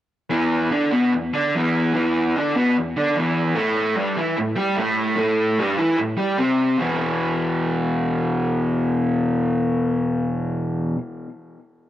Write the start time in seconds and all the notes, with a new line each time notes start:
0.30 E2 E3
0.70 D3 D4
0.92 B2 B3
1.13 E2
1.33 D3 D4
1.55 E2 E3
1.94 E2 E3
2.36 D3 D4
2.56 B2 B3
2.77 E2
2.96 D3 D4
3.16 E2 E3
3.55 A2 A3
3.96 G2 G3
4.17 E3 E4
4.38 A2
4.56 G3 G4
4.76 A2 A3
5.16 A2 A3
5.59 G2 G3
5.77 E3 E4
5.98 A2
6.17 G3 G4
6.38 C3 C4
6.77 E2 B2 E3